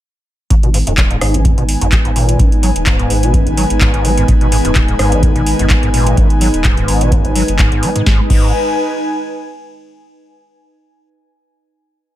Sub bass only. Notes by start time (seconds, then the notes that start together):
0.50 G#1
0.87 D#1
1.21 G#1
1.58 G#1
1.81 G#1
2.05 G#1
2.39 G#1
2.76 D#1
3.10 G#1
3.47 G#1
3.70 G#1
3.94 G#1
4.28 G#1
4.65 D#1
4.99 G#1
5.36 G#1
5.59 G#1
5.83 G#1
6.17 G#1
6.54 D#1
6.88 G#1
7.25 G#1
7.48 F#1
7.72 G#1
8.06 G#1
8.30 G#1